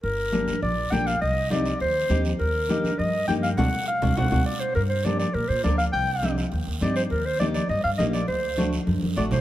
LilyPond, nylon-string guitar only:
\new Staff \with { instrumentName = "Nylon-string guitar" } { \time 4/4 \key g \minor \tempo 4 = 204 r4 <bes d' g'>8 r4. <bes d' g'>8 r8 | r4 <c' ees' g'>8 r4. <c' ees' g'>8 r8 | r4 <bes ees' g'>8 r4. <bes ees' g'>8 r8 | <c' d' fis'>8 r4 <c' d' fis'>8 <c' d' fis'>8 <c' d' fis'>8 r4 |
r4 <bes d' g'>8 r4. <bes d' bes'>8 r8 | r4 <c' ees' g'>8 r4. <c' ees' g'>8 r8 | r4 <bes ees' g'>8 r4. <bes ees' g'>8 r8 | r4 <a d' fis'>8 r4. <a d' fis'>8 r8 | }